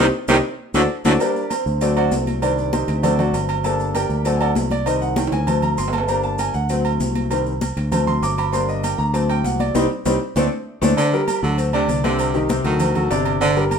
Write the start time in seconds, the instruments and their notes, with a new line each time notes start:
0.28 fingered electric bass C2, trombone section C3 D#3 G3, baritone saxophone D#3, grand piano C4 D#4 G4, cowbell, high conga, high timbale, maracas
0.74 fingered electric bass D2, baritone saxophone D3, trombone section D3 F#3 A3, grand piano D4 F#4 A4, cowbell, high conga, high timbale, maracas
1.05 fingered electric bass D2, trombone section D3 F#3 A3, baritone saxophone D3, grand piano D4 F#4 A4, cowbell, high conga, high timbale, maracas
1.20 grand piano G3 A#3 D4 G4 A#4 D5, cowbell, low agogo, maracas
1.35 high conga, maracas
1.50 grand piano C4 C5, cowbell, high conga, low agogo, maracas
1.66 fingered electric bass D2, high conga, maracas
1.81 grand piano F#3 A3 C4 D4 F#4 A4 D5, cowbell, high conga, low agogo, maracas
1.97 grand piano F#4 C5 D5 F#5, high conga, low agogo, maracas
2.12 fingered electric bass C2, cowbell, high conga, low timbale, maracas
2.27 high conga, low agogo, maracas
2.42 grand piano D#3 G3 C4 D4 D5, cowbell, high conga, low agogo, maracas
2.58 high conga, maracas
2.73 grand piano C4 D#4 G4 C5, cowbell, high conga, low agogo, maracas
2.88 fingered electric bass D2, cowbell, high conga, low agogo, maracas
3.03 grand piano F#3 A3 C4 D4 F#4 A4 D5, cowbell, high conga, low conga, low agogo, maracas
3.19 grand piano F#4 C5 D5 F#5, high conga, low conga, low agogo, maracas
3.33 fingered electric bass G1, cowbell, high conga, low agogo, maracas
3.49 cowbell, low agogo, maracas
3.64 grand piano G3 A#3 D4 A4 A5, cowbell, high conga, low agogo, maracas
3.79 high conga, maracas
3.95 grand piano G4 A#4 D5 G5, cowbell, high conga, low agogo, maracas
4.09 fingered electric bass D2, high conga, maracas
4.25 grand piano F#3 A3 C4 A4 D5 F#5 A5, cowbell, high conga, low agogo, maracas
4.36 grand piano G#5
4.40 grand piano A4 D5 F#5 A5, high conga, low agogo, maracas
4.55 fingered electric bass C2, cowbell, high conga, low timbale, maracas
4.71 grand piano D5, high conga, low agogo, maracas
4.86 grand piano D#3 G3 C4 D#5, cowbell, high conga, low agogo, maracas
5.01 grand piano F#5, high conga, maracas
5.16 grand piano G5, cowbell, high conga, high timbale, low agogo, maracas
5.27 high timbale
5.32 fingered electric bass D2, grand piano G#5, cowbell, high conga, low agogo, maracas
5.47 grand piano F#3 A3 C4 A5, cowbell, high conga, low conga, low agogo, maracas
5.62 grand piano A#5, high conga, low conga, low agogo, maracas
5.78 fingered electric bass G1, grand piano C6, cowbell, high conga, low agogo, maracas
5.88 low timbale
5.93 grand piano A5, cowbell, high conga, low agogo, maracas
5.98 low timbale
6.08 grand piano G3 A#3 D4 A#5, cowbell, high conga, low agogo, maracas
6.23 grand piano A5, high conga, maracas
6.38 grand piano G#5, cowbell, high conga, low agogo, maracas
6.54 fingered electric bass D2, grand piano F#5, high conga, maracas
6.69 grand piano F#3 A3 C4, cowbell, high conga, low agogo, maracas
6.85 high conga, low agogo, maracas
7.00 fingered electric bass C2, cowbell, high conga, maracas
7.15 high conga, low agogo, maracas
7.31 grand piano D#3 G3 C4, cowbell, low agogo, maracas
7.46 high conga, maracas
7.61 cowbell, high conga, low agogo, maracas
7.77 fingered electric bass D2, cowbell, high conga, low agogo, maracas
7.91 grand piano F#3 A3 C4 A5, cowbell, high conga, low conga, low agogo, maracas
8.07 grand piano C6, high conga, low conga, low agogo, maracas
8.22 fingered electric bass G1, grand piano D6, cowbell, high conga, low agogo, maracas
8.38 grand piano B5, cowbell, low agogo, maracas
8.53 grand piano G3 A#3 D4 C6, cowbell, high conga, low agogo, maracas
8.69 grand piano D#5, high conga, maracas
8.83 grand piano G5, cowbell, high conga, low agogo, maracas
8.98 fingered electric bass D2, grand piano A#5, high conga, maracas
9.13 grand piano F#3 A3 C4 A5, cowbell, high conga, low agogo, maracas
9.29 grand piano G5, high conga, low agogo, maracas
9.44 fingered electric bass C2, grand piano F#5, cowbell, high conga, maracas
9.60 grand piano D5, high conga, low agogo, maracas
9.75 fingered electric bass C2, grand piano G3 C4 D#4, cowbell, high conga, high timbale, maracas
10.05 fingered electric bass C2, grand piano G3 C4 D#4, cowbell, high conga, high timbale, maracas
10.36 fingered electric bass D2, grand piano A3 C4 D4, cowbell, high conga, high timbale, maracas
10.81 fingered electric bass D2, grand piano A3 C4 D4, cowbell, high conga, high timbale, maracas
10.97 grand piano D3 D4 D5, baritone saxophone D3, cowbell, low agogo, maracas
11.13 grand piano G3 G4 A#4, high conga, maracas
11.28 cowbell, high conga, low agogo, maracas
11.43 fingered electric bass D2, baritone saxophone D3, grand piano F#3 F#4 A4, high conga, maracas
11.58 cowbell, high conga, low agogo, maracas
11.73 baritone saxophone C3, grand piano D3 D4 D5, high conga, low agogo, maracas
11.88 fingered electric bass C2, cowbell, high conga, maracas
12.04 grand piano C3 C4 C5, baritone saxophone D3, high conga, low agogo, maracas
12.19 cowbell, high conga, low agogo, maracas
12.34 grand piano D#3 D#4 G4, high conga, maracas
12.49 grand piano C3 C4 C5, cowbell, high conga, low agogo, maracas
12.64 fingered electric bass D2, baritone saxophone D#3, grand piano F#3 F#4 A4, cowbell, high conga, low agogo, maracas
12.79 cowbell, high conga, low conga, low agogo, maracas
12.95 grand piano F#3 F#4 A4, high conga, low conga, low agogo, maracas
13.10 fingered electric bass G1, grand piano C3 D4 D5, cowbell, high conga, low timbale, low agogo, maracas
13.25 cowbell, low agogo, maracas
13.41 grand piano D3 D4 D5, baritone saxophone D3, cowbell, high conga, low agogo, maracas
13.56 grand piano G3 G4 A#4, high conga, maracas
13.71 cowbell, high conga, low agogo, maracas